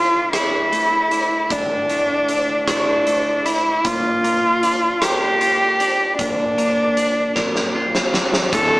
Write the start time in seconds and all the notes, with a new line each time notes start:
Already playing: D2 A2 D3 F4
0.33 E4, cross-stick, closed hi-hat
0.72 A3, closed hi-hat
1.11 D3, closed hi-hat
1.50 D2 D4, kick, closed hi-hat
1.89 A2, closed hi-hat
2.29 D3, closed hi-hat
2.68 D4 E4, kick, cross-stick, closed hi-hat
3.07 A3, closed hi-hat
3.46 D3 E4, closed hi-hat
3.85 A#2 F4, kick, closed hi-hat
4.24 A#3, closed hi-hat
4.63 D4, closed hi-hat
5.02 G4 A#4, cross-stick, closed hi-hat
5.41 F4, closed hi-hat
5.80 D4, closed hi-hat
6.19 A#2 D4, kick, closed hi-hat
6.58 A#3, closed hi-hat
6.97 D4, closed hi-hat
7.36 A#4, kick, snare
7.56 snare
7.75 F4
7.95 snare
8.14 D4, snare
8.34 snare
8.52 D1 D2 A4, kick, closed hi-hat